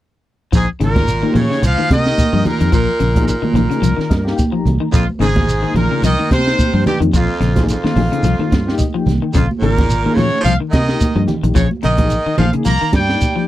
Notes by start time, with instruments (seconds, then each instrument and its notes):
0.52 fingered electric bass A#1, baritone saxophone G#2, clean electric guitar F3, horn section G#4, kick, closed hi-hat, shekere
0.80 fingered electric bass G#1, baritone saxophone A#2, clean electric guitar C#3, reed electric piano A#3 D#4 G#4, horn section A#4, closed hi-hat, shekere
0.96 kick, snare, high conga, low conga
1.08 closed hi-hat, shekere
1.22 clean electric guitar D#3, reed electric piano A#3 D#4 G4, high conga
1.34 fingered electric bass A#2, baritone saxophone C#3, clean electric guitar F3, horn section C#5, closed hi-hat, high conga, low conga, shekere
1.50 clean electric guitar C#3, snare
1.62 fingered electric bass C2, baritone saxophone F3, muted clean electric guitar stroke, closed hi-hat, shekere
1.67 horn section F5
1.78 clean electric guitar D#3, high conga
1.90 fingered electric bass C3, baritone saxophone D#3, horn section D#5, kick, snare, closed hi-hat, high conga, shekere
2.05 reed electric piano A#3 D#4 G4, snare
2.18 kick, closed hi-hat, high conga, shekere
2.33 fingered electric bass G2, clean electric guitar F3
2.45 baritone saxophone A#2, reed electric piano A#3 D#4 G4, horn section A#4, closed hi-hat, high conga, low conga, shekere
2.60 fingered electric bass F2, clean electric guitar D#3, closed hi-hat
2.72 fingered electric bass A#1, baritone saxophone A#2, clean electric guitar F3, horn section A#4, kick, closed hi-hat, shekere
3.00 fingered electric bass A#1, clean electric guitar C#3, closed hi-hat, shekere
3.14 reed electric piano A#3 D#4 G#4, kick, closed hi-hat, high conga
3.27 baritone saxophone A#2, horn section A#4, closed hi-hat, shekere
3.42 clean electric guitar D#3, muted fingered electric bass stroke, high conga
3.54 fingered electric bass A#1, clean electric guitar F3, reed electric piano A#3 D#4 A#4, closed hi-hat, high conga, low conga, shekere
3.69 clean electric guitar C#3, reed electric piano A#3 D#4 G#4, closed hi-hat
3.82 fingered electric bass C2, clean electric guitar F3, closed hi-hat, shekere
3.97 clean electric guitar D#3, muted fingered electric bass stroke, snare
4.10 fingered electric bass G2, reed electric piano D#5, kick, snare, closed hi-hat, high conga, shekere
4.23 reed electric piano A#3 D#4 G4 F5, snare
4.37 reed electric piano G5, kick, closed hi-hat, high conga, shekere
4.51 clean electric guitar F3, reed electric piano A#5
4.65 fingered electric bass C2, closed hi-hat, high conga, low conga, shekere
4.80 clean electric guitar D#3
4.92 fingered electric bass A#1, baritone saxophone F2, clean electric guitar F3, horn section F4, kick, closed hi-hat, shekere
5.10 high conga
5.19 fingered electric bass G#1, baritone saxophone G#2, clean electric guitar C#3, reed electric piano A#3 D#4 G#4, horn section G#4, closed hi-hat, shekere
5.36 kick, snare, high conga, low conga
5.49 closed hi-hat, shekere
5.62 clean electric guitar D#3, reed electric piano A#3 D#4 G#4
5.74 fingered electric bass A#1, baritone saxophone A#2, clean electric guitar F3, horn section A#4, closed hi-hat, high conga, low conga, shekere
5.91 clean electric guitar C#3
6.02 fingered electric bass C2, baritone saxophone D#3, clean electric guitar F3, horn section D#5, snare, closed hi-hat, shekere
6.19 clean electric guitar D#3, high conga
6.31 fingered electric bass C3, baritone saxophone C3, horn section C5, kick, snare, closed hi-hat, high conga, shekere
6.45 reed electric piano A#3 D#4 G4, snare
6.59 kick, closed hi-hat, high conga, shekere
6.74 fingered electric bass G2, clean electric guitar F3
6.84 baritone saxophone G2, reed electric piano A#3 D#4 G4, horn section G4, closed hi-hat, high conga, low conga, shekere
7.00 fingered electric bass F2, clean electric guitar D#3, closed hi-hat
7.13 fingered electric bass A#1, baritone saxophone F2, clean electric guitar F3, horn section F4, kick, closed hi-hat, shekere
7.40 fingered electric bass A#1, clean electric guitar C#3, snare, closed hi-hat, shekere
7.55 reed electric piano A#3 D#4 G#4, kick, snare, closed hi-hat, high conga, low conga
7.69 baritone saxophone F2, horn section F4, snare, closed hi-hat, shekere
7.84 clean electric guitar D#3, muted fingered electric bass stroke, snare, high conga
7.96 fingered electric bass A#1, clean electric guitar F3, reed electric piano A#3 D#4 G#4, open hi-hat, high conga, low conga, shekere
8.12 clean electric guitar C#3, reed electric piano A#3 D#4 G#4, closed hi-hat
8.23 fingered electric bass C2, clean electric guitar F3, closed hi-hat, shekere
8.39 clean electric guitar D#3, high conga
8.51 fingered electric bass G2, kick, snare, closed hi-hat, high conga, shekere
8.66 reed electric piano A#3 D#4 G4, snare
8.78 reed electric piano D#5, kick, closed hi-hat, high conga, shekere
8.94 clean electric guitar F3, reed electric piano G5
9.06 fingered electric bass C2, snare, closed hi-hat, high conga, low conga, shekere
9.22 clean electric guitar D#3
9.34 fingered electric bass A#1, baritone saxophone F2, clean electric guitar C#3, horn section F4, kick, closed hi-hat, shekere
9.51 high conga
9.60 fingered electric bass G#1, baritone saxophone A#2, clean electric guitar C#3, reed electric piano A#3 D#4 G#4, horn section A#4, closed hi-hat, shekere
9.78 kick, snare, high conga, low conga
9.90 closed hi-hat, shekere
10.03 clean electric guitar D#3, reed electric piano A#3 D#4 G#4, high conga
10.14 fingered electric bass A#2, baritone saxophone C#3, clean electric guitar F3, horn section C#5, shekere
10.18 closed hi-hat, high conga, low conga
10.41 fingered electric bass C2, baritone saxophone F3, horn section F5, shekere
10.45 clean electric guitar F3, snare, closed hi-hat
10.60 clean electric guitar D#3
10.70 fingered electric bass C3, baritone saxophone D#3, horn section D#5, kick, snare, closed hi-hat, high conga, shekere
10.87 reed electric piano A#3 D#4 G4, snare
11.00 kick, closed hi-hat, high conga, shekere
11.16 fingered electric bass G2, clean electric guitar F3
11.27 reed electric piano A#3 D#4 G4, closed hi-hat, low conga, shekere
11.43 fingered electric bass A#1, clean electric guitar D#3, closed hi-hat
11.55 fingered electric bass A#1, baritone saxophone C#3, clean electric guitar F3, horn section C#5, kick, closed hi-hat, shekere
11.71 high conga
11.83 fingered electric bass A#1, clean electric guitar C#3, baritone saxophone D#3, horn section D#5, snare, closed hi-hat, shekere
11.96 reed electric piano A#3 D#4 G#4, kick, closed hi-hat, high conga, low conga
12.10 closed hi-hat, shekere
12.26 clean electric guitar D#3, muted fingered electric bass stroke
12.38 fingered electric bass A#1, clean electric guitar F3, baritone saxophone F3, reed electric piano A#3 D#4 G#4, horn section F5, closed hi-hat, high conga, low conga, shekere
12.50 clean electric guitar C#3, reed electric piano A#3 D#4 G#4, closed hi-hat
12.65 fingered electric bass C2, clean electric guitar F3, baritone saxophone A#3, horn section A#5, closed hi-hat, shekere
12.81 clean electric guitar D#3
12.93 fingered electric bass G2, baritone saxophone G3, horn section G5, kick, snare, closed hi-hat, high conga, shekere
13.08 reed electric piano A#3 D#4 G4, snare
13.21 kick, closed hi-hat, high conga, shekere
13.36 clean electric guitar F3